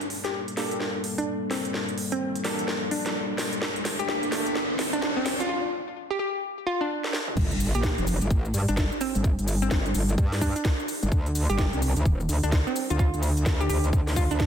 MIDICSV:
0, 0, Header, 1, 8, 480
1, 0, Start_track
1, 0, Key_signature, -2, "minor"
1, 0, Tempo, 468750
1, 1785, Time_signature, 4, 2, 24, 8
1, 14809, End_track
2, 0, Start_track
2, 0, Title_t, "Analog synth pad"
2, 0, Program_c, 0, 89
2, 0, Note_on_c, 0, 55, 85
2, 0, Note_on_c, 0, 58, 74
2, 0, Note_on_c, 0, 69, 91
2, 3666, Note_off_c, 0, 58, 0
2, 3704, Note_on_c, 0, 62, 80
2, 5583, Note_off_c, 0, 55, 0
2, 5583, Note_off_c, 0, 69, 0
2, 5605, Note_off_c, 0, 62, 0
2, 7544, Note_on_c, 0, 81, 92
2, 7545, Note_on_c, 0, 67, 87
2, 7545, Note_on_c, 0, 70, 77
2, 11346, Note_off_c, 0, 70, 0
2, 11383, Note_on_c, 0, 74, 81
2, 13285, Note_off_c, 0, 74, 0
2, 13303, Note_on_c, 0, 72, 78
2, 14809, Note_off_c, 0, 67, 0
2, 14809, Note_off_c, 0, 72, 0
2, 14809, Note_off_c, 0, 81, 0
2, 14809, End_track
3, 0, Start_track
3, 0, Title_t, "Synth stab"
3, 0, Program_c, 1, 62
3, 584, Note_on_c, 1, 58, 73
3, 584, Note_on_c, 1, 69, 82
3, 585, Note_on_c, 1, 62, 69
3, 585, Note_on_c, 1, 67, 68
3, 2482, Note_off_c, 1, 58, 0
3, 2482, Note_off_c, 1, 69, 0
3, 2483, Note_off_c, 1, 62, 0
3, 2483, Note_off_c, 1, 67, 0
3, 2503, Note_on_c, 1, 58, 75
3, 2503, Note_on_c, 1, 69, 84
3, 2504, Note_on_c, 1, 62, 69
3, 2504, Note_on_c, 1, 67, 69
3, 3693, Note_off_c, 1, 58, 0
3, 3693, Note_off_c, 1, 62, 0
3, 3693, Note_off_c, 1, 67, 0
3, 3693, Note_off_c, 1, 69, 0
3, 4424, Note_on_c, 1, 57, 78
3, 4424, Note_on_c, 1, 62, 70
3, 4424, Note_on_c, 1, 67, 72
3, 4424, Note_on_c, 1, 69, 84
3, 5624, Note_off_c, 1, 57, 0
3, 5624, Note_off_c, 1, 62, 0
3, 5624, Note_off_c, 1, 67, 0
3, 5624, Note_off_c, 1, 69, 0
3, 14809, End_track
4, 0, Start_track
4, 0, Title_t, "Synth pluck"
4, 0, Program_c, 2, 84
4, 251, Note_on_c, 2, 67, 91
4, 418, Note_off_c, 2, 67, 0
4, 1211, Note_on_c, 2, 62, 87
4, 1378, Note_off_c, 2, 62, 0
4, 1543, Note_on_c, 2, 60, 89
4, 1738, Note_off_c, 2, 60, 0
4, 2172, Note_on_c, 2, 60, 93
4, 2339, Note_off_c, 2, 60, 0
4, 2983, Note_on_c, 2, 62, 84
4, 3078, Note_off_c, 2, 62, 0
4, 3131, Note_on_c, 2, 62, 75
4, 3191, Note_off_c, 2, 62, 0
4, 4091, Note_on_c, 2, 67, 93
4, 4259, Note_off_c, 2, 67, 0
4, 5051, Note_on_c, 2, 62, 91
4, 5218, Note_off_c, 2, 62, 0
4, 5291, Note_on_c, 2, 60, 92
4, 5459, Note_off_c, 2, 60, 0
4, 5532, Note_on_c, 2, 65, 89
4, 5591, Note_off_c, 2, 65, 0
4, 5624, Note_on_c, 2, 65, 79
4, 5719, Note_off_c, 2, 65, 0
4, 6251, Note_on_c, 2, 67, 90
4, 6311, Note_off_c, 2, 67, 0
4, 6342, Note_on_c, 2, 67, 77
4, 6438, Note_off_c, 2, 67, 0
4, 6824, Note_on_c, 2, 65, 93
4, 6943, Note_off_c, 2, 65, 0
4, 6970, Note_on_c, 2, 62, 91
4, 7451, Note_off_c, 2, 62, 0
4, 7933, Note_on_c, 2, 67, 92
4, 8100, Note_off_c, 2, 67, 0
4, 8893, Note_on_c, 2, 62, 90
4, 9060, Note_off_c, 2, 62, 0
4, 9225, Note_on_c, 2, 60, 94
4, 9419, Note_off_c, 2, 60, 0
4, 9854, Note_on_c, 2, 60, 94
4, 10020, Note_off_c, 2, 60, 0
4, 10665, Note_on_c, 2, 62, 86
4, 10760, Note_off_c, 2, 62, 0
4, 10812, Note_on_c, 2, 62, 78
4, 10872, Note_off_c, 2, 62, 0
4, 11773, Note_on_c, 2, 67, 98
4, 11939, Note_off_c, 2, 67, 0
4, 12734, Note_on_c, 2, 62, 92
4, 12900, Note_off_c, 2, 62, 0
4, 12974, Note_on_c, 2, 60, 92
4, 13140, Note_off_c, 2, 60, 0
4, 13214, Note_on_c, 2, 65, 87
4, 13272, Note_off_c, 2, 65, 0
4, 13306, Note_on_c, 2, 65, 78
4, 13400, Note_off_c, 2, 65, 0
4, 13932, Note_on_c, 2, 67, 89
4, 13991, Note_off_c, 2, 67, 0
4, 14024, Note_on_c, 2, 67, 77
4, 14119, Note_off_c, 2, 67, 0
4, 14504, Note_on_c, 2, 65, 94
4, 14623, Note_off_c, 2, 65, 0
4, 14654, Note_on_c, 2, 62, 91
4, 14809, Note_off_c, 2, 62, 0
4, 14809, End_track
5, 0, Start_track
5, 0, Title_t, "Wobble bass"
5, 0, Program_c, 3, 39
5, 7544, Note_on_c, 3, 31, 96
5, 7909, Note_off_c, 3, 31, 0
5, 7934, Note_on_c, 3, 34, 94
5, 8150, Note_off_c, 3, 34, 0
5, 8173, Note_on_c, 3, 29, 98
5, 8389, Note_off_c, 3, 29, 0
5, 8413, Note_on_c, 3, 31, 98
5, 8490, Note_off_c, 3, 31, 0
5, 8505, Note_on_c, 3, 33, 94
5, 8730, Note_off_c, 3, 33, 0
5, 8744, Note_on_c, 3, 43, 98
5, 8869, Note_off_c, 3, 43, 0
5, 8893, Note_on_c, 3, 31, 99
5, 9109, Note_off_c, 3, 31, 0
5, 9373, Note_on_c, 3, 31, 95
5, 9589, Note_off_c, 3, 31, 0
5, 9613, Note_on_c, 3, 31, 96
5, 9930, Note_off_c, 3, 31, 0
5, 9944, Note_on_c, 3, 31, 98
5, 10170, Note_off_c, 3, 31, 0
5, 10184, Note_on_c, 3, 31, 97
5, 10410, Note_off_c, 3, 31, 0
5, 10424, Note_on_c, 3, 43, 96
5, 10789, Note_off_c, 3, 43, 0
5, 11292, Note_on_c, 3, 31, 98
5, 11370, Note_off_c, 3, 31, 0
5, 11384, Note_on_c, 3, 38, 97
5, 11749, Note_off_c, 3, 38, 0
5, 11772, Note_on_c, 3, 31, 96
5, 11989, Note_off_c, 3, 31, 0
5, 12012, Note_on_c, 3, 36, 96
5, 12229, Note_off_c, 3, 36, 0
5, 12252, Note_on_c, 3, 38, 100
5, 12330, Note_off_c, 3, 38, 0
5, 12344, Note_on_c, 3, 27, 97
5, 12570, Note_off_c, 3, 27, 0
5, 12584, Note_on_c, 3, 38, 95
5, 12709, Note_off_c, 3, 38, 0
5, 12733, Note_on_c, 3, 38, 98
5, 12949, Note_off_c, 3, 38, 0
5, 13213, Note_on_c, 3, 38, 96
5, 13429, Note_off_c, 3, 38, 0
5, 13453, Note_on_c, 3, 38, 95
5, 13770, Note_off_c, 3, 38, 0
5, 13784, Note_on_c, 3, 38, 98
5, 14010, Note_off_c, 3, 38, 0
5, 14025, Note_on_c, 3, 38, 95
5, 14250, Note_off_c, 3, 38, 0
5, 14264, Note_on_c, 3, 38, 98
5, 14629, Note_off_c, 3, 38, 0
5, 14652, Note_on_c, 3, 38, 97
5, 14809, Note_off_c, 3, 38, 0
5, 14809, End_track
6, 0, Start_track
6, 0, Title_t, "Impact"
6, 0, Program_c, 4, 103
6, 7545, Note_on_c, 4, 60, 73
6, 9465, Note_off_c, 4, 60, 0
6, 14809, End_track
7, 0, Start_track
7, 0, Title_t, "Riser"
7, 0, Program_c, 5, 103
7, 0, Note_on_c, 5, 60, 76
7, 5624, Note_off_c, 5, 60, 0
7, 14809, End_track
8, 0, Start_track
8, 0, Title_t, "Drums"
8, 12, Note_on_c, 9, 42, 52
8, 103, Note_on_c, 9, 46, 102
8, 114, Note_off_c, 9, 42, 0
8, 206, Note_off_c, 9, 46, 0
8, 252, Note_on_c, 9, 38, 43
8, 252, Note_on_c, 9, 42, 63
8, 354, Note_off_c, 9, 38, 0
8, 354, Note_off_c, 9, 42, 0
8, 492, Note_on_c, 9, 42, 53
8, 584, Note_on_c, 9, 38, 49
8, 584, Note_on_c, 9, 46, 85
8, 594, Note_off_c, 9, 42, 0
8, 687, Note_off_c, 9, 38, 0
8, 687, Note_off_c, 9, 46, 0
8, 732, Note_on_c, 9, 42, 63
8, 824, Note_on_c, 9, 38, 49
8, 834, Note_off_c, 9, 42, 0
8, 926, Note_off_c, 9, 38, 0
8, 1063, Note_on_c, 9, 46, 96
8, 1166, Note_off_c, 9, 46, 0
8, 1212, Note_on_c, 9, 42, 67
8, 1314, Note_off_c, 9, 42, 0
8, 1543, Note_on_c, 9, 38, 57
8, 1543, Note_on_c, 9, 46, 92
8, 1645, Note_off_c, 9, 38, 0
8, 1645, Note_off_c, 9, 46, 0
8, 1691, Note_on_c, 9, 42, 65
8, 1784, Note_on_c, 9, 38, 56
8, 1793, Note_off_c, 9, 42, 0
8, 1886, Note_off_c, 9, 38, 0
8, 1932, Note_on_c, 9, 42, 51
8, 2024, Note_on_c, 9, 46, 106
8, 2034, Note_off_c, 9, 42, 0
8, 2126, Note_off_c, 9, 46, 0
8, 2171, Note_on_c, 9, 42, 65
8, 2274, Note_off_c, 9, 42, 0
8, 2412, Note_on_c, 9, 42, 52
8, 2504, Note_on_c, 9, 38, 61
8, 2504, Note_on_c, 9, 46, 92
8, 2514, Note_off_c, 9, 42, 0
8, 2606, Note_off_c, 9, 38, 0
8, 2606, Note_off_c, 9, 46, 0
8, 2651, Note_on_c, 9, 42, 65
8, 2743, Note_on_c, 9, 38, 66
8, 2754, Note_off_c, 9, 42, 0
8, 2845, Note_off_c, 9, 38, 0
8, 2983, Note_on_c, 9, 46, 105
8, 3085, Note_off_c, 9, 46, 0
8, 3131, Note_on_c, 9, 38, 60
8, 3131, Note_on_c, 9, 42, 67
8, 3234, Note_off_c, 9, 38, 0
8, 3234, Note_off_c, 9, 42, 0
8, 3463, Note_on_c, 9, 38, 69
8, 3463, Note_on_c, 9, 46, 95
8, 3566, Note_off_c, 9, 38, 0
8, 3566, Note_off_c, 9, 46, 0
8, 3611, Note_on_c, 9, 42, 67
8, 3703, Note_on_c, 9, 38, 73
8, 3714, Note_off_c, 9, 42, 0
8, 3805, Note_off_c, 9, 38, 0
8, 3851, Note_on_c, 9, 42, 50
8, 3943, Note_on_c, 9, 38, 77
8, 3943, Note_on_c, 9, 46, 111
8, 3953, Note_off_c, 9, 42, 0
8, 4046, Note_off_c, 9, 38, 0
8, 4046, Note_off_c, 9, 46, 0
8, 4091, Note_on_c, 9, 42, 63
8, 4184, Note_on_c, 9, 38, 78
8, 4194, Note_off_c, 9, 42, 0
8, 4286, Note_off_c, 9, 38, 0
8, 4332, Note_on_c, 9, 42, 51
8, 4424, Note_on_c, 9, 38, 78
8, 4424, Note_on_c, 9, 46, 96
8, 4434, Note_off_c, 9, 42, 0
8, 4526, Note_off_c, 9, 38, 0
8, 4526, Note_off_c, 9, 46, 0
8, 4572, Note_on_c, 9, 42, 62
8, 4664, Note_on_c, 9, 38, 81
8, 4674, Note_off_c, 9, 42, 0
8, 4766, Note_off_c, 9, 38, 0
8, 4904, Note_on_c, 9, 38, 86
8, 4904, Note_on_c, 9, 46, 112
8, 5006, Note_off_c, 9, 38, 0
8, 5006, Note_off_c, 9, 46, 0
8, 5052, Note_on_c, 9, 42, 67
8, 5144, Note_on_c, 9, 38, 85
8, 5155, Note_off_c, 9, 42, 0
8, 5246, Note_off_c, 9, 38, 0
8, 5383, Note_on_c, 9, 38, 92
8, 5383, Note_on_c, 9, 46, 101
8, 5486, Note_off_c, 9, 38, 0
8, 5486, Note_off_c, 9, 46, 0
8, 5532, Note_on_c, 9, 42, 66
8, 5635, Note_off_c, 9, 42, 0
8, 7213, Note_on_c, 9, 38, 52
8, 7304, Note_off_c, 9, 38, 0
8, 7304, Note_on_c, 9, 38, 82
8, 7407, Note_off_c, 9, 38, 0
8, 7453, Note_on_c, 9, 45, 82
8, 7545, Note_on_c, 9, 36, 118
8, 7545, Note_on_c, 9, 49, 108
8, 7547, Note_on_c, 9, 69, 45
8, 7555, Note_off_c, 9, 45, 0
8, 7647, Note_off_c, 9, 36, 0
8, 7647, Note_off_c, 9, 49, 0
8, 7649, Note_off_c, 9, 69, 0
8, 7692, Note_on_c, 9, 42, 55
8, 7695, Note_on_c, 9, 69, 22
8, 7784, Note_on_c, 9, 46, 108
8, 7787, Note_off_c, 9, 69, 0
8, 7787, Note_on_c, 9, 69, 79
8, 7795, Note_off_c, 9, 42, 0
8, 7887, Note_off_c, 9, 46, 0
8, 7889, Note_off_c, 9, 69, 0
8, 7933, Note_on_c, 9, 42, 70
8, 7935, Note_on_c, 9, 69, 33
8, 8023, Note_on_c, 9, 38, 127
8, 8025, Note_on_c, 9, 36, 119
8, 8027, Note_off_c, 9, 69, 0
8, 8027, Note_on_c, 9, 69, 44
8, 8035, Note_off_c, 9, 42, 0
8, 8125, Note_off_c, 9, 38, 0
8, 8127, Note_off_c, 9, 36, 0
8, 8129, Note_off_c, 9, 69, 0
8, 8173, Note_on_c, 9, 42, 56
8, 8175, Note_on_c, 9, 69, 22
8, 8264, Note_on_c, 9, 46, 106
8, 8266, Note_off_c, 9, 69, 0
8, 8266, Note_on_c, 9, 69, 77
8, 8275, Note_off_c, 9, 42, 0
8, 8366, Note_off_c, 9, 46, 0
8, 8369, Note_off_c, 9, 69, 0
8, 8412, Note_on_c, 9, 42, 69
8, 8414, Note_on_c, 9, 69, 33
8, 8504, Note_on_c, 9, 36, 115
8, 8507, Note_off_c, 9, 69, 0
8, 8507, Note_on_c, 9, 69, 45
8, 8515, Note_off_c, 9, 42, 0
8, 8607, Note_off_c, 9, 36, 0
8, 8609, Note_off_c, 9, 69, 0
8, 8654, Note_on_c, 9, 69, 22
8, 8744, Note_on_c, 9, 46, 104
8, 8746, Note_off_c, 9, 69, 0
8, 8746, Note_on_c, 9, 69, 76
8, 8846, Note_off_c, 9, 46, 0
8, 8848, Note_off_c, 9, 69, 0
8, 8892, Note_on_c, 9, 42, 70
8, 8894, Note_on_c, 9, 69, 35
8, 8982, Note_on_c, 9, 38, 124
8, 8984, Note_on_c, 9, 36, 123
8, 8986, Note_off_c, 9, 69, 0
8, 8986, Note_on_c, 9, 69, 44
8, 8995, Note_off_c, 9, 42, 0
8, 9085, Note_off_c, 9, 38, 0
8, 9087, Note_off_c, 9, 36, 0
8, 9088, Note_off_c, 9, 69, 0
8, 9134, Note_on_c, 9, 69, 22
8, 9224, Note_on_c, 9, 46, 104
8, 9226, Note_off_c, 9, 69, 0
8, 9226, Note_on_c, 9, 69, 79
8, 9326, Note_off_c, 9, 46, 0
8, 9329, Note_off_c, 9, 69, 0
8, 9372, Note_on_c, 9, 42, 68
8, 9374, Note_on_c, 9, 69, 35
8, 9464, Note_on_c, 9, 36, 122
8, 9466, Note_off_c, 9, 69, 0
8, 9466, Note_on_c, 9, 69, 44
8, 9474, Note_off_c, 9, 42, 0
8, 9567, Note_off_c, 9, 36, 0
8, 9568, Note_off_c, 9, 69, 0
8, 9612, Note_on_c, 9, 42, 54
8, 9615, Note_on_c, 9, 69, 21
8, 9704, Note_on_c, 9, 46, 113
8, 9706, Note_off_c, 9, 69, 0
8, 9706, Note_on_c, 9, 69, 78
8, 9715, Note_off_c, 9, 42, 0
8, 9807, Note_off_c, 9, 46, 0
8, 9809, Note_off_c, 9, 69, 0
8, 9852, Note_on_c, 9, 42, 68
8, 9854, Note_on_c, 9, 69, 32
8, 9942, Note_on_c, 9, 38, 123
8, 9944, Note_on_c, 9, 36, 123
8, 9946, Note_off_c, 9, 69, 0
8, 9946, Note_on_c, 9, 69, 43
8, 9955, Note_off_c, 9, 42, 0
8, 10045, Note_off_c, 9, 38, 0
8, 10046, Note_off_c, 9, 36, 0
8, 10049, Note_off_c, 9, 69, 0
8, 10093, Note_on_c, 9, 42, 54
8, 10095, Note_on_c, 9, 69, 22
8, 10184, Note_on_c, 9, 46, 110
8, 10186, Note_off_c, 9, 69, 0
8, 10186, Note_on_c, 9, 69, 75
8, 10195, Note_off_c, 9, 42, 0
8, 10286, Note_off_c, 9, 46, 0
8, 10289, Note_off_c, 9, 69, 0
8, 10332, Note_on_c, 9, 42, 67
8, 10334, Note_on_c, 9, 69, 33
8, 10424, Note_on_c, 9, 36, 124
8, 10426, Note_off_c, 9, 69, 0
8, 10426, Note_on_c, 9, 69, 43
8, 10434, Note_off_c, 9, 42, 0
8, 10526, Note_off_c, 9, 36, 0
8, 10529, Note_off_c, 9, 69, 0
8, 10570, Note_on_c, 9, 38, 39
8, 10572, Note_on_c, 9, 46, 64
8, 10574, Note_on_c, 9, 69, 22
8, 10664, Note_off_c, 9, 46, 0
8, 10664, Note_on_c, 9, 36, 64
8, 10664, Note_on_c, 9, 46, 110
8, 10666, Note_off_c, 9, 69, 0
8, 10666, Note_on_c, 9, 69, 74
8, 10673, Note_off_c, 9, 38, 0
8, 10766, Note_off_c, 9, 36, 0
8, 10767, Note_off_c, 9, 46, 0
8, 10769, Note_off_c, 9, 69, 0
8, 10813, Note_on_c, 9, 42, 70
8, 10815, Note_on_c, 9, 69, 33
8, 10903, Note_on_c, 9, 38, 124
8, 10904, Note_on_c, 9, 36, 125
8, 10907, Note_off_c, 9, 69, 0
8, 10907, Note_on_c, 9, 69, 42
8, 10915, Note_off_c, 9, 42, 0
8, 11006, Note_off_c, 9, 36, 0
8, 11006, Note_off_c, 9, 38, 0
8, 11010, Note_off_c, 9, 69, 0
8, 11055, Note_on_c, 9, 69, 21
8, 11144, Note_on_c, 9, 46, 112
8, 11147, Note_off_c, 9, 69, 0
8, 11147, Note_on_c, 9, 69, 77
8, 11247, Note_off_c, 9, 46, 0
8, 11249, Note_off_c, 9, 69, 0
8, 11292, Note_on_c, 9, 42, 68
8, 11295, Note_on_c, 9, 69, 33
8, 11384, Note_on_c, 9, 36, 127
8, 11387, Note_off_c, 9, 69, 0
8, 11387, Note_on_c, 9, 69, 44
8, 11395, Note_off_c, 9, 42, 0
8, 11487, Note_off_c, 9, 36, 0
8, 11489, Note_off_c, 9, 69, 0
8, 11533, Note_on_c, 9, 42, 52
8, 11535, Note_on_c, 9, 69, 21
8, 11625, Note_on_c, 9, 46, 115
8, 11627, Note_off_c, 9, 69, 0
8, 11627, Note_on_c, 9, 69, 76
8, 11635, Note_off_c, 9, 42, 0
8, 11727, Note_off_c, 9, 46, 0
8, 11729, Note_off_c, 9, 69, 0
8, 11773, Note_on_c, 9, 42, 64
8, 11776, Note_on_c, 9, 69, 32
8, 11863, Note_on_c, 9, 38, 122
8, 11864, Note_on_c, 9, 36, 123
8, 11867, Note_off_c, 9, 69, 0
8, 11867, Note_on_c, 9, 69, 42
8, 11876, Note_off_c, 9, 42, 0
8, 11966, Note_off_c, 9, 36, 0
8, 11966, Note_off_c, 9, 38, 0
8, 11970, Note_off_c, 9, 69, 0
8, 12013, Note_on_c, 9, 42, 53
8, 12015, Note_on_c, 9, 69, 22
8, 12104, Note_on_c, 9, 46, 111
8, 12107, Note_off_c, 9, 69, 0
8, 12107, Note_on_c, 9, 69, 75
8, 12115, Note_off_c, 9, 42, 0
8, 12207, Note_off_c, 9, 46, 0
8, 12209, Note_off_c, 9, 69, 0
8, 12253, Note_on_c, 9, 42, 63
8, 12255, Note_on_c, 9, 69, 32
8, 12344, Note_on_c, 9, 36, 127
8, 12347, Note_off_c, 9, 69, 0
8, 12347, Note_on_c, 9, 69, 45
8, 12355, Note_off_c, 9, 42, 0
8, 12447, Note_off_c, 9, 36, 0
8, 12449, Note_off_c, 9, 69, 0
8, 12495, Note_on_c, 9, 69, 21
8, 12585, Note_on_c, 9, 46, 108
8, 12587, Note_off_c, 9, 69, 0
8, 12587, Note_on_c, 9, 69, 74
8, 12687, Note_off_c, 9, 46, 0
8, 12690, Note_off_c, 9, 69, 0
8, 12733, Note_on_c, 9, 42, 67
8, 12735, Note_on_c, 9, 69, 33
8, 12823, Note_on_c, 9, 38, 124
8, 12824, Note_on_c, 9, 36, 127
8, 12827, Note_off_c, 9, 69, 0
8, 12827, Note_on_c, 9, 69, 42
8, 12835, Note_off_c, 9, 42, 0
8, 12926, Note_off_c, 9, 38, 0
8, 12927, Note_off_c, 9, 36, 0
8, 12930, Note_off_c, 9, 69, 0
8, 12975, Note_on_c, 9, 69, 21
8, 13064, Note_on_c, 9, 46, 114
8, 13067, Note_off_c, 9, 69, 0
8, 13067, Note_on_c, 9, 69, 76
8, 13167, Note_off_c, 9, 46, 0
8, 13169, Note_off_c, 9, 69, 0
8, 13212, Note_on_c, 9, 42, 65
8, 13215, Note_on_c, 9, 69, 33
8, 13304, Note_on_c, 9, 36, 124
8, 13306, Note_off_c, 9, 69, 0
8, 13306, Note_on_c, 9, 69, 44
8, 13315, Note_off_c, 9, 42, 0
8, 13407, Note_off_c, 9, 36, 0
8, 13409, Note_off_c, 9, 69, 0
8, 13452, Note_on_c, 9, 42, 51
8, 13455, Note_on_c, 9, 69, 21
8, 13544, Note_on_c, 9, 46, 116
8, 13546, Note_off_c, 9, 69, 0
8, 13546, Note_on_c, 9, 69, 77
8, 13555, Note_off_c, 9, 42, 0
8, 13646, Note_off_c, 9, 46, 0
8, 13648, Note_off_c, 9, 69, 0
8, 13692, Note_on_c, 9, 42, 65
8, 13694, Note_on_c, 9, 69, 32
8, 13782, Note_on_c, 9, 38, 122
8, 13784, Note_on_c, 9, 36, 123
8, 13786, Note_off_c, 9, 69, 0
8, 13786, Note_on_c, 9, 69, 44
8, 13795, Note_off_c, 9, 42, 0
8, 13885, Note_off_c, 9, 38, 0
8, 13887, Note_off_c, 9, 36, 0
8, 13889, Note_off_c, 9, 69, 0
8, 13932, Note_on_c, 9, 42, 50
8, 13934, Note_on_c, 9, 69, 22
8, 14024, Note_on_c, 9, 46, 110
8, 14026, Note_off_c, 9, 69, 0
8, 14026, Note_on_c, 9, 69, 74
8, 14035, Note_off_c, 9, 42, 0
8, 14126, Note_off_c, 9, 46, 0
8, 14129, Note_off_c, 9, 69, 0
8, 14172, Note_on_c, 9, 42, 60
8, 14174, Note_on_c, 9, 69, 32
8, 14264, Note_on_c, 9, 36, 124
8, 14267, Note_off_c, 9, 69, 0
8, 14267, Note_on_c, 9, 69, 44
8, 14274, Note_off_c, 9, 42, 0
8, 14367, Note_off_c, 9, 36, 0
8, 14369, Note_off_c, 9, 69, 0
8, 14410, Note_on_c, 9, 38, 36
8, 14412, Note_on_c, 9, 46, 63
8, 14414, Note_on_c, 9, 69, 22
8, 14504, Note_off_c, 9, 46, 0
8, 14504, Note_on_c, 9, 36, 64
8, 14504, Note_on_c, 9, 46, 108
8, 14506, Note_off_c, 9, 69, 0
8, 14506, Note_on_c, 9, 69, 76
8, 14513, Note_off_c, 9, 38, 0
8, 14606, Note_off_c, 9, 46, 0
8, 14607, Note_off_c, 9, 36, 0
8, 14609, Note_off_c, 9, 69, 0
8, 14652, Note_on_c, 9, 42, 66
8, 14654, Note_on_c, 9, 69, 34
8, 14743, Note_on_c, 9, 38, 117
8, 14744, Note_on_c, 9, 36, 127
8, 14746, Note_off_c, 9, 69, 0
8, 14746, Note_on_c, 9, 69, 44
8, 14755, Note_off_c, 9, 42, 0
8, 14809, Note_off_c, 9, 36, 0
8, 14809, Note_off_c, 9, 38, 0
8, 14809, Note_off_c, 9, 69, 0
8, 14809, End_track
0, 0, End_of_file